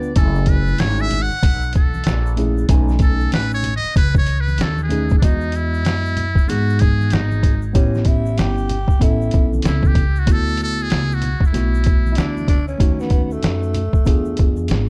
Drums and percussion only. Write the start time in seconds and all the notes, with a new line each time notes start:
0.03 shaker
0.16 kick, closed hi-hat, shaker
0.35 shaker
0.46 kick, closed hi-hat, high conga, shaker
0.67 shaker
0.78 snare, closed hi-hat, low conga, shaker
0.98 shaker
1.10 closed hi-hat, low conga, shaker
1.31 shaker
1.43 kick, snare, closed hi-hat, shaker
1.62 shaker
1.73 kick, closed hi-hat, shaker
1.94 high conga, shaker
2.04 snare, closed hi-hat, shaker
2.26 shaker
2.37 closed hi-hat, low conga, shaker
2.58 shaker
2.69 kick, closed hi-hat, shaker
2.89 snare, high conga, shaker
2.99 kick, closed hi-hat, high conga, shaker
3.20 shaker
3.32 snare, closed hi-hat, low conga, shaker
3.51 shaker
3.63 closed hi-hat, low conga, shaker
3.83 shaker
3.96 kick, closed hi-hat, shaker
4.15 kick, high conga, shaker
4.26 closed hi-hat, shaker
4.48 high conga, shaker
4.58 snare, closed hi-hat, shaker
4.78 high conga, shaker
4.90 closed hi-hat, low conga, shaker
5.09 kick, shaker
5.22 kick, closed hi-hat, shaker
5.41 shaker
5.52 closed hi-hat, shaker
5.74 shaker
5.85 snare, closed hi-hat, shaker
6.06 shaker
6.17 closed hi-hat, low conga, shaker
6.35 kick, shaker
6.49 snare, closed hi-hat, shaker
6.69 shaker
6.79 kick, closed hi-hat, shaker
7.01 high conga, shaker
7.10 snare, closed hi-hat, shaker
7.31 high conga, shaker
7.43 kick, closed hi-hat, low conga, shaker
7.62 shaker
7.75 kick, closed hi-hat, shaker
7.94 snare, shaker
8.05 kick, closed hi-hat, shaker
8.26 shaker
8.37 snare, closed hi-hat, shaker
8.57 shaker
8.69 closed hi-hat, low conga, shaker
8.88 kick, shaker
9.01 kick, closed hi-hat, shaker
9.21 shaker
9.31 kick, closed hi-hat, shaker
9.53 high conga, shaker
9.62 snare, closed hi-hat, shaker
9.83 kick, high conga, shaker
9.95 kick, closed hi-hat, low conga, shaker
10.16 shaker
10.27 kick, closed hi-hat, shaker
10.48 shaker
10.57 closed hi-hat, shaker
10.79 shaker
10.90 snare, closed hi-hat, shaker
11.11 shaker
11.22 closed hi-hat, low conga, shaker
11.40 kick, shaker
11.54 snare, closed hi-hat, shaker
11.74 shaker
11.84 kick, closed hi-hat, shaker
12.06 high conga, shaker
12.15 snare, closed hi-hat, shaker
12.37 high conga, shaker
12.48 kick, closed hi-hat, low conga, shaker
12.68 shaker
12.80 kick, closed hi-hat, shaker
13.00 snare, shaker
13.10 kick, closed hi-hat, shaker
13.31 shaker
13.43 snare, closed hi-hat, shaker
13.63 shaker
13.74 closed hi-hat, low conga, shaker
13.93 kick, shaker
14.05 kick, closed hi-hat, shaker
14.25 shaker
14.37 kick, closed hi-hat, shaker
14.56 high conga, shaker
14.68 snare, closed hi-hat, shaker